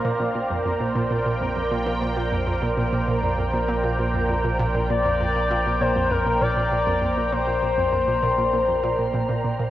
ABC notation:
X:1
M:4/4
L:1/16
Q:1/4=99
K:Bbmix
V:1 name="Synth texture"
b16- | b16- | b16- | b16 |]
V:2 name="Analog synth lead"
z16 | z16 | d6 c2 B2 d6 | c12- c2 z2 |]
V:3 name="Analog synth pad"
[B,Bcdg]16- | [B,Bcdg]16- | [B,Bcdg]16- | [B,Bcdg]16 |]
V:4 name="Synth arpeggio sound" clef=bass
B,, B,, B,, F,, F,, B,, B,, B,, B,, F,, F,, B,, B,, B,, B,, F,, | F,, B,, B,, B,, B,, F,, F,, B,, B,, B,, B,, F,, F,, B,, B,, B,, | B,, F,, F,, B,, B,, B,, B,, F,, F,, B,, B,, B,, B,, F,, F,, B,, | B,, B,, B,, F,, F,, B,, B,, B,, B,, F,, B,, B,, B,, B,, B,, B,, |]
V:5 name="Sub bass" clef=bass
B,,,16- | B,,,16- | B,,,16- | B,,,16 |]